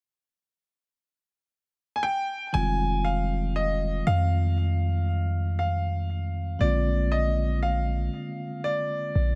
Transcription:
1.96 G#5
2.03 G5
2.53 F1 D#3 G3 G#3 C4 F4 G#5
3.05 F5
3.56 D#5
4.07 F2 F5
5.59 F5
6.59 A#1 D3 G#3 A#3 C4 D5
6.63 F4
7.12 D#5
7.63 F5
8.64 D5
9.15 A#1

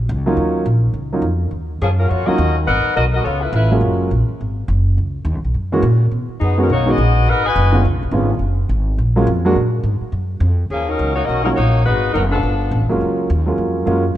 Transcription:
0.09 C#2
0.26 F#3 A#3 C#4 D#4 F4
0.37 D#2
0.66 A#1
0.94 C#2
1.12 F#3 A#3 C#4 D#4 F4
1.22 F2
1.51 D#2
1.81 F#2 F3 A#3 C#4 G#4
1.99 F#3 C#4 F4 A#4
2.09 F2 A#3 F4 F#4 C#5
2.26 F#3 A#3 C#4 D#4 F4 F#4 A#4 D#5, muted upright bass stroke
2.38 D#2
2.67 G#1 D#4 A#4 B4 F#5
2.85 muted upright bass stroke
2.96 B1 B3 F#4 A#4 D#5
3.14 B3 F#4 A#4 D#5
3.24 C#2 B3 F4 A4 C#5
3.42 A3 E4 F4 B4
3.53 A1 A3 E4 F4 B4
3.71 F#3 G#3 A#3 C#4 F4
3.81 F#1
4.11 A#1
4.29 muted upright bass stroke
4.41 G#1
4.68 F#1
4.97 C#2
5.25 D#2
5.35 C#2
5.44 B1
5.54 F#2
5.72 E3 G#3 A#3 C#4 F#4
5.82 A#2
6.11 B2
6.29 muted upright bass stroke
6.40 F#2 F#3 B3 D#4 G#4
6.57 D#3 F#3 G#3 B3 C#4 D#4 F#4 A#4
6.70 B1 A#3 D#4 F#4 C#5
6.86 D#3 G#3 B3 C#4 F#4 G#4 D#5
6.98 A#1
7.27 G#1 D#4 A#4 B4 F#5
7.45 F#4 B4 D#5 G#5
7.56 F#1
7.73 D3 G#3 B3 C#4 F4
7.85 C#2
7.94 B1
8.03 G#1
8.11 G#1 D3 G#3 B3 C#4 F4
8.39 F#1
8.69 G#1
8.98 A#1
9.16 F#3 G#3 A#3 C#4 F4
9.27 F2
9.45 F#3 G#3 A#3 D4 F#4
9.56 A#2
9.83 G#2
10.01 muted upright bass stroke
10.12 F#2
10.40 F2
10.70 D#2 F3 A#3 C#4 G#4
10.88 F#3 C#4 D#4 A#4
10.99 C#2
11.16 A#3 D#4 F#4 C#5
11.25 B1 C#4 F#4 A#4 D#5
11.44 F#3 A#3 C#4 D#4 F4 A#4
11.55 A#1 A#3 D#4 F#4 C#5
11.85 G#1 G#3 D#4 F#4 B4
12.14 F#1 F#3 B3 D#4 A#4
12.32 F3 B3 D4 A4
12.43 G1
12.71 A1
12.81 G1
12.89 F1 F#3 G#3 A#3 C#4 F4
13.01 C#2
13.30 D#2
13.46 F#3 G#3 A#3 C#4 F4
13.58 F2
13.86 F#2 F#3 G#3 A#3 C#4 F4

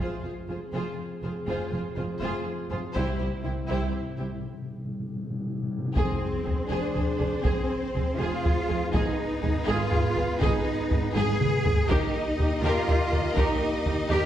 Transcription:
0.00 C4 F4 G#4 C5, taiko
0.23 F1 F2 F4 G#4 C5
0.49 F1 F2 F4 G#4 C5
0.73 F1 F2 F4 G#4 C5
1.23 F1 F2 F4 G#4 C5
1.47 F1 F2 F4 G#4 C5
1.71 F1 F2 F4 G#4 C5
1.95 F1 F2 F4 C5
1.99 G#4
2.19 F1 F2 F4 C5
2.24 G#4
2.71 F1 F2 F4 G#4 C5
2.94 C2 C4 E4 G4 C5, taiko
3.04 C3
3.18 C2 C3 E4 G4 C5
3.27 C3
3.35 C3
3.42 C2 C3 E4 G4 C5
3.47 C2 C3
3.56 C3
3.64 C3
3.68 C2 E4 G4 C5
3.79 C3
3.87 C3
3.94 C3
4.02 C3
4.09 C3
4.16 C2 C3 E4 G4 C5
4.24 C3
4.32 C3
4.39 C3
4.47 C3
4.54 C3
4.62 C3
4.71 C3
4.78 C3
4.85 C3
4.92 C3
5.00 C3
5.09 C3
5.16 C3
5.23 C3
5.30 C3
5.39 C3
5.46 C3
5.55 C3
5.63 C3
5.71 C3
5.79 C3
5.86 C3
5.94 F1 F2 C4 G#4 C5, taiko
6.44 F1 G#4, taiko low
6.69 F1 D4 G#4
6.94 F1 G#4, taiko low
7.19 F1 G#4, taiko low
7.43 F1 C4 G#4, taiko
7.95 F1 G#4, taiko low
8.19 F1 F4 G#4
8.45 F1 G#4, taiko low
8.68 F1 G#4, taiko low
8.93 G#1 B3 D#4 G#4 B4, taiko
9.43 G#1 G#4, taiko low
9.66 G#1 F4 G#4
9.91 G#1 G#4, taiko low
10.16 G#1 G#4, taiko low
10.40 G#1 D#4 G#4, taiko
10.90 G#1 G#4, taiko low
11.14 G#1 G#4, taiko high
11.41 G#1 G#4, taiko mid
11.64 G#1 G#4, taiko low
11.89 D#2 A#3 D#4 G4 A#4 D#5, taiko
12.38 D#2 G4 A#4, taiko low
12.63 D#2 F4 G4 A#4
12.87 D#2 G4 A#4, taiko low
13.12 D#2 G4 A#4, taiko low
13.34 D#2 D#4 G4 A#4, taiko
13.86 D#2 G4 A#4, taiko low
14.10 D#2 G4 A#4

